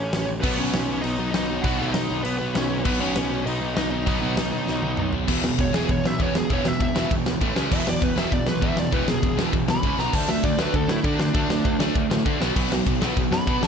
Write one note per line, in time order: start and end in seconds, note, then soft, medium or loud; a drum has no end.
0.00 0.12 A1 medium
0.00 0.24 C#4 medium
0.00 0.27 C#5 medium
0.13 0.40 A1 medium
0.13 snare loud
0.13 open hi-hat medium
0.41 0.70 B1 medium
0.41 0.55 B2 medium
0.41 0.60 B2 loud
0.41 0.56 F#3 medium
0.41 0.59 F#3 medium
0.41 0.58 B3 medium
0.41 0.56 B3 loud
0.41 0.59 B3 loud
0.41 0.56 B4 medium
0.41 kick loud
0.41 crash loud
0.56 0.71 B2 medium
0.56 0.71 F#3 loud
0.56 0.74 F#3 medium
0.56 0.74 B3 medium
0.56 1.01 C#4 medium
0.56 1.01 C#5 medium
0.60 0.74 B2 medium
0.60 0.71 B3 loud
0.73 1.00 B1 medium
0.73 0.90 B2 medium
0.73 0.89 F#3 loud
0.73 0.88 B3 loud
0.73 snare loud
0.73 open hi-hat medium
0.89 1.04 B2 medium
0.89 1.04 F#3 medium
0.89 1.04 B3 medium
1.01 1.17 B1 medium
1.01 1.20 B2 loud
1.01 1.19 F#3 medium
1.01 1.19 B3 loud
1.01 1.32 D#4 medium
1.01 1.30 D#5 medium
1.01 open hi-hat medium
1.19 1.32 B1 medium
1.19 1.33 B2 medium
1.19 1.34 F#3 medium
1.19 1.34 B3 medium
1.31 1.61 B1 loud
1.31 1.50 B2 medium
1.31 1.49 F#3 loud
1.31 1.49 B3 loud
1.31 1.62 D#4 medium
1.31 1.64 D#5 loud
1.31 snare loud
1.31 open hi-hat medium
1.49 1.64 B2 medium
1.49 1.65 F#3 loud
1.49 1.65 B3 loud
1.62 1.78 B1 loud
1.62 1.76 B2 medium
1.62 1.81 B2 loud
1.62 1.77 F#3 loud
1.62 1.80 F#3 loud
1.62 1.77 B3 loud
1.62 1.80 B3 loud
1.62 1.79 F#4 medium
1.62 1.77 F#5 medium
1.62 kick loud
1.62 open hi-hat medium
1.77 1.92 B1 medium
1.77 1.91 B2 medium
1.77 1.92 F#3 medium
1.77 1.95 F#3 medium
1.77 1.92 B3 loud
1.77 1.96 B3 medium
1.77 2.22 D#4 medium
1.77 2.25 D#5 medium
1.81 1.95 B2 medium
1.94 2.08 B1 medium
1.94 2.11 B2 medium
1.94 2.10 F#3 loud
1.94 2.10 B3 loud
1.94 snare loud
1.94 open hi-hat medium
2.10 2.23 B1 medium
2.10 2.24 B2 medium
2.10 2.25 F#3 medium
2.10 2.26 B3 medium
2.23 2.38 B1 loud
2.23 2.41 B2 loud
2.23 2.40 F#3 loud
2.23 2.40 B3 medium
2.23 2.40 B3 loud
2.23 2.37 B4 medium
2.23 open hi-hat medium
2.38 2.54 B1 medium
2.38 2.54 B2 medium
2.38 2.55 F#3 medium
2.38 2.55 B3 loud
2.38 2.55 B3 medium
2.38 2.54 B4 medium
2.54 2.82 B1 loud
2.54 2.70 B2 medium
2.54 2.70 F#3 medium
2.54 2.69 B3 loud
2.54 2.77 C#4 medium
2.54 2.78 C#5 medium
2.54 snare loud
2.54 open hi-hat medium
2.70 2.85 B2 medium
2.70 2.86 F#3 medium
2.70 2.86 B3 medium
2.84 3.12 B1 loud
2.84 2.98 B2 medium
2.84 3.01 B2 loud
2.84 3.00 F#3 loud
2.84 2.98 F#3 loud
2.84 3.00 B3 loud
2.84 2.98 B3 loud
2.84 3.01 B3 medium
2.84 3.00 B4 medium
2.84 kick loud
2.84 crash loud
3.00 3.13 B2 loud
3.00 3.15 B2 medium
3.00 3.13 F#3 loud
3.00 3.16 F#3 medium
3.00 3.16 B3 medium
3.00 3.13 B3 loud
3.00 3.44 C#4 medium
3.00 3.46 C#5 loud
3.16 3.42 B1 medium
3.16 3.30 B2 loud
3.16 3.30 F#3 loud
3.16 3.30 B3 medium
3.16 snare loud
3.16 open hi-hat medium
3.30 3.44 B2 medium
3.30 3.45 F#3 loud
3.30 3.46 B3 loud
3.46 3.59 B1 loud
3.46 3.61 B2 medium
3.46 3.60 F#3 loud
3.46 3.61 B3 loud
3.46 3.75 D#4 medium
3.46 3.74 D#5 medium
3.46 open hi-hat medium
3.60 3.74 B1 loud
3.60 3.75 B2 medium
3.60 3.76 F#3 medium
3.60 3.77 B3 loud
3.75 4.03 B1 medium
3.75 3.91 B2 loud
3.75 3.90 F#3 medium
3.75 3.90 B3 loud
3.75 3.91 D#4 medium
3.75 3.90 D#5 loud
3.75 snare loud
3.75 open hi-hat medium
3.91 4.05 B2 medium
3.91 4.05 F#3 medium
3.91 4.06 B3 loud
3.91 5.09 D#4 medium
3.91 5.09 D#5 medium
4.06 4.20 B1 medium
4.06 4.21 B2 loud
4.06 4.19 B2 medium
4.06 4.21 F#3 loud
4.06 4.19 F#3 medium
4.06 4.20 B3 loud
4.06 kick loud
4.06 open hi-hat medium
4.21 4.35 B1 medium
4.21 4.34 B2 loud
4.21 4.36 B2 medium
4.21 4.34 F#3 medium
4.21 4.36 F#3 medium
4.21 4.37 B3 medium
4.21 4.35 B3 medium
4.37 4.51 B1 medium
4.37 4.52 B2 medium
4.37 4.51 F#3 medium
4.37 4.51 B3 medium
4.37 snare loud
4.37 open hi-hat medium
4.52 4.66 B1 loud
4.52 4.65 B2 medium
4.52 4.66 F#3 medium
4.52 4.67 B3 medium
4.67 4.81 B1 loud
4.67 4.82 B2 loud
4.67 4.82 F#3 loud
4.67 4.81 B3 loud
4.67 snare medium
4.82 4.96 B1 medium
4.82 4.96 B2 medium
4.82 4.97 F#3 medium
4.82 4.98 B3 medium
4.82 high tom medium
4.97 5.25 B1 medium
4.97 5.13 B2 medium
4.97 5.13 F#3 medium
4.97 5.12 B3 medium
4.97 mid tom medium
5.13 5.28 B2 medium
5.13 5.28 F#3 medium
5.13 5.28 B3 medium
5.13 floor tom medium
5.28 5.38 E1 medium
5.28 6.49 E2 medium
5.28 5.42 E2 medium
5.28 5.43 B2 medium
5.28 6.49 B2 loud
5.28 5.43 E3 loud
5.28 6.50 E3 medium
5.28 kick loud
5.28 crash loud
5.43 5.52 E1 medium
5.43 5.57 E2 medium
5.43 5.57 B2 medium
5.43 snare loud
5.58 5.68 E1 medium
5.58 5.71 E2 medium
5.58 5.72 B2 medium
5.58 5.74 C#5 loud
5.58 kick loud
5.58 ride medium
5.73 5.83 E1 medium
5.73 5.88 E2 medium
5.73 5.88 B2 loud
5.73 5.88 E3 loud
5.73 5.89 G#4 medium
5.73 snare loud
5.89 5.98 E1 medium
5.89 6.03 E2 medium
5.89 6.03 B2 medium
5.89 6.07 C#5 medium
5.89 kick loud
5.89 ride medium
6.04 6.14 B1 medium
6.04 6.18 E2 medium
6.04 6.18 B2 medium
6.04 6.20 E5 medium
6.04 snare loud
6.19 6.33 E2 medium
6.19 6.29 E2 loud
6.19 6.34 B2 loud
6.19 6.34 E3 loud
6.19 6.36 C#5 loud
6.19 kick loud
6.19 ride medium
6.34 6.44 E1 medium
6.34 6.48 E2 medium
6.34 6.48 B2 medium
6.34 6.51 G#4 medium
6.34 snare loud
6.50 6.59 E1 medium
6.50 6.64 E2 medium
6.50 7.40 E2 loud
6.50 6.64 B2 loud
6.50 7.41 B2 loud
6.50 6.65 E3 loud
6.50 7.41 E3 loud
6.50 6.68 C#5 medium
6.50 kick loud
6.50 ride medium
6.65 6.74 E1 medium
6.65 6.79 E2 medium
6.65 6.79 B2 medium
6.65 6.81 E5 medium
6.65 snare loud
6.80 6.90 E1 loud
6.80 6.94 E2 medium
6.80 6.94 B2 medium
6.80 7.11 E5 medium
6.80 kick loud
6.80 ride medium
6.95 7.04 E1 loud
6.95 7.09 E2 medium
6.95 7.09 B2 medium
6.95 7.10 E3 medium
6.95 snare loud
7.11 7.20 E1 medium
7.11 7.24 E2 medium
7.11 7.24 B2 medium
7.11 kick loud
7.11 ride medium
7.25 7.35 B1 loud
7.25 7.40 E2 medium
7.25 7.40 B2 medium
7.25 snare loud
7.40 7.50 A1 medium
7.40 7.55 A2 medium
7.40 7.55 E3 loud
7.40 7.56 A3 loud
7.40 kick loud
7.40 ride medium
7.55 7.65 C#2 medium
7.55 7.70 C#3 loud
7.55 7.70 G#3 loud
7.55 7.70 C#4 medium
7.55 snare loud
7.70 7.81 E1 loud
7.70 7.84 E2 medium
7.70 8.91 E2 loud
7.70 7.84 B2 medium
7.70 8.92 B2 loud
7.70 7.86 E3 loud
7.70 8.93 E3 loud
7.70 7.87 E5 loud
7.70 kick loud
7.70 crash loud
7.85 7.95 E1 medium
7.85 7.99 E2 medium
7.85 7.99 B2 medium
7.85 8.04 D5 loud
7.85 snare loud
8.01 8.11 E1 loud
8.01 8.14 E2 medium
8.01 8.15 B2 medium
8.01 8.17 B4 medium
8.01 kick loud
8.01 ride medium
8.16 8.25 E1 loud
8.16 8.30 E2 medium
8.16 8.30 B2 medium
8.16 8.31 E3 medium
8.16 8.32 E5 medium
8.16 snare loud
8.31 8.41 E1 medium
8.31 8.45 E2 medium
8.31 8.45 B2 medium
8.31 8.47 D5 medium
8.31 kick loud
8.31 ride medium
8.46 8.56 B1 loud
8.46 8.60 E2 medium
8.46 8.60 B2 medium
8.46 8.62 B4 medium
8.46 snare loud
8.61 8.76 E2 medium
8.61 8.71 E2 loud
8.61 8.76 B2 medium
8.61 8.77 E3 loud
8.61 8.78 E5 loud
8.61 kick loud
8.61 ride medium
8.77 8.87 E1 medium
8.77 8.90 E2 medium
8.77 8.90 B2 medium
8.77 8.93 D5 medium
8.77 snare loud
8.91 9.02 E1 loud
8.91 9.06 E2 medium
8.91 9.82 E2 medium
8.91 9.06 B2 medium
8.91 9.83 B2 loud
8.91 9.07 E3 loud
8.91 9.83 E3 loud
8.91 9.08 B4 medium
8.91 kick loud
8.91 ride medium
9.07 9.17 E1 medium
9.07 9.21 E2 medium
9.07 9.21 B2 medium
9.07 9.38 G#4 medium
9.07 snare loud
9.22 9.32 E1 medium
9.22 9.36 E2 medium
9.22 9.36 B2 medium
9.22 kick loud
9.22 ride medium
9.37 9.47 E1 medium
9.37 9.52 E2 medium
9.37 9.52 B2 loud
9.37 9.52 E3 medium
9.37 snare loud
9.53 9.62 E1 medium
9.53 9.66 E2 medium
9.53 9.67 B2 medium
9.53 kick loud
9.53 ride medium
9.68 9.77 C2 medium
9.68 9.82 E2 medium
9.68 9.82 B2 medium
9.68 9.99 B5 medium
9.68 snare loud
9.83 9.93 C#2 medium
9.83 9.97 C#3 loud
9.83 9.98 G#3 medium
9.83 9.98 C#4 loud
9.83 kick loud
9.83 ride medium
9.99 10.08 B1 medium
9.99 10.12 B2 medium
9.99 10.13 F#3 medium
9.99 10.13 B3 loud
9.99 10.14 A#5 loud
9.99 snare medium
10.13 10.23 D2 loud
10.13 10.28 D3 medium
10.13 11.32 D3 loud
10.13 10.28 A3 medium
10.13 11.34 A3 medium
10.13 10.28 D4 loud
10.13 11.35 D4 loud
10.13 10.29 A5 medium
10.13 kick loud
10.13 splash medium
10.13 crash loud
10.28 10.38 D2 medium
10.28 10.42 D3 medium
10.28 10.43 A3 medium
10.28 10.44 E5 medium
10.28 snare loud
10.43 10.53 D2 medium
10.43 10.57 D3 medium
10.43 10.58 A3 medium
10.43 10.60 D5 medium
10.43 kick loud
10.43 ride medium
10.58 10.67 D2 medium
10.58 10.73 D3 medium
10.58 10.73 A3 medium
10.58 10.74 D4 loud
10.58 10.74 B4 medium
10.58 snare loud
10.74 10.83 D2 loud
10.74 10.88 D3 medium
10.74 10.88 A3 medium
10.74 10.90 A4 medium
10.74 kick loud
10.74 ride medium
10.88 10.97 A2 medium
10.88 11.03 D3 medium
10.88 11.03 A3 medium
10.88 11.05 E4 medium
10.88 snare loud
11.04 11.13 D3 loud
11.04 11.19 D3 medium
11.04 11.19 A3 loud
11.04 11.19 D4 loud
11.04 kick loud
11.04 ride medium
11.18 11.27 D2 medium
11.18 11.33 D3 medium
11.18 11.33 A3 medium
11.18 11.79 D4 loud
11.18 snare loud
11.34 11.44 D2 loud
11.34 12.39 D3 loud
11.34 11.48 D3 medium
11.34 11.48 A3 loud
11.34 12.40 A3 loud
11.34 11.49 D4 medium
11.34 12.41 D4 loud
11.34 kick loud
11.34 ride medium
11.49 11.59 D2 medium
11.49 11.63 D3 medium
11.49 11.63 A3 medium
11.49 snare loud
11.65 11.74 D2 medium
11.65 11.78 D3 medium
11.65 11.79 A3 medium
11.65 kick loud
11.65 ride medium
11.79 11.89 D2 medium
11.79 11.93 D3 medium
11.79 11.93 A3 loud
11.79 11.95 D4 loud
11.79 snare loud
11.95 12.04 D2 loud
11.95 12.09 D3 medium
11.95 12.09 A3 medium
11.95 kick loud
11.95 ride medium
12.10 12.19 A2 loud
12.10 12.24 D3 medium
12.10 12.24 A3 medium
12.10 snare loud
12.25 12.40 D3 medium
12.25 12.35 D3 loud
12.25 12.40 A3 loud
12.25 12.40 D4 loud
12.25 kick loud
12.25 ride medium
12.40 12.50 B1 loud
12.40 13.60 B2 loud
12.40 12.54 B2 medium
12.40 12.55 F#3 medium
12.40 13.62 F#3 loud
12.40 12.56 B3 loud
12.40 13.62 B3 loud
12.40 snare loud
12.56 12.65 B1 medium
12.56 12.70 B2 medium
12.56 12.70 F#3 medium
12.56 12.71 B3 loud
12.56 kick loud
12.56 crash loud
12.70 12.80 B1 medium
12.70 12.85 B2 medium
12.70 12.85 F#3 loud
12.70 snare loud
12.86 12.96 B1 medium
12.86 13.00 B2 medium
12.86 13.00 F#3 medium
12.86 kick loud
12.86 ride medium
13.01 13.11 B1 loud
13.01 13.16 B2 medium
13.01 13.16 F#3 loud
13.01 13.16 B3 loud
13.01 snare loud
13.17 13.26 B1 medium
13.17 13.31 B2 medium
13.17 13.31 F#3 medium
13.17 kick loud
13.17 ride medium
13.31 13.40 F#2 loud
13.31 13.46 B2 medium
13.31 13.46 F#3 medium
13.31 13.62 B5 loud
13.31 snare loud
13.47 13.56 B2 loud
13.47 13.62 B2 loud
13.47 13.62 F#3 loud
13.47 13.62 B3 loud
13.47 kick loud
13.47 ride medium
13.62 13.67 B1 medium
13.62 13.67 B2 medium
13.62 13.67 F#3 medium
13.62 13.67 F#3 loud
13.62 13.67 B3 loud
13.62 13.67 A5 loud
13.62 snare loud